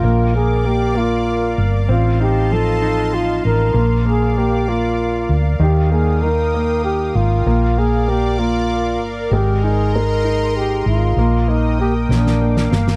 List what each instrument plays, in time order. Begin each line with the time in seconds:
Already playing: flugelhorn F4, analog synth pad A#4
0.03 fingered electric bass A#1, grand piano A#3, analog synth pad D5 F5 D6
0.35 grand piano A#3, flugelhorn G#4
0.64 grand piano A#3, flugelhorn G4
0.95 grand piano A#3, flugelhorn F4
1.58 fingered electric bass G1
1.88 fingered electric bass A1, grand piano C4, flugelhorn F4, analog synth pad D#5 A5 C6
2.20 grand piano D#4, flugelhorn G4
2.51 grand piano F3, flugelhorn A4
2.82 grand piano D#4
3.14 flugelhorn F4
3.45 fingered electric bass A1, flugelhorn A#4
3.74 fingered electric bass A#1, grand piano A#3, analog synth pad A#4 D5 D6
4.05 grand piano A#3, flugelhorn G#4
4.38 grand piano A#3, flugelhorn G4
4.68 grand piano A#3, flugelhorn F4
5.29 fingered electric bass D2
5.59 fingered electric bass D#2, grand piano D#3, flugelhorn G4, analog synth pad G5 D#6
5.91 grand piano A#3, flugelhorn G#4
6.22 grand piano D#3, flugelhorn A#4
6.54 grand piano A#3
6.84 flugelhorn G4
7.15 fingered electric bass G#1, flugelhorn F4
7.46 fingered electric bass A#1, grand piano A#3, analog synth pad D5 D6
7.78 grand piano A#3, flugelhorn G#4
8.08 grand piano A#3, flugelhorn G4
8.39 grand piano A#3, flugelhorn F4
9.01 fingered electric bass G1
9.31 fingered electric bass G#1, grand piano G#3, flugelhorn G4, analog synth pad D#5 A#5 C6
9.63 grand piano D#4, flugelhorn G#4
9.95 grand piano G#3, flugelhorn A#4
10.24 grand piano D#4
10.56 flugelhorn G4
10.86 fingered electric bass G#1, flugelhorn F4
11.16 fingered electric bass A#1, grand piano A#3, analog synth pad D#5 G5 D#6
11.48 grand piano A#3, flugelhorn D#4
11.80 grand piano A#3, flugelhorn G4
12.09 fingered electric bass A#1, grand piano A#3, flugelhorn D4, analog synth pad F5 D6, snare
12.27 snare
12.41 grand piano A#3
12.57 snare
12.71 fingered electric bass G1, grand piano A#3, snare
12.88 snare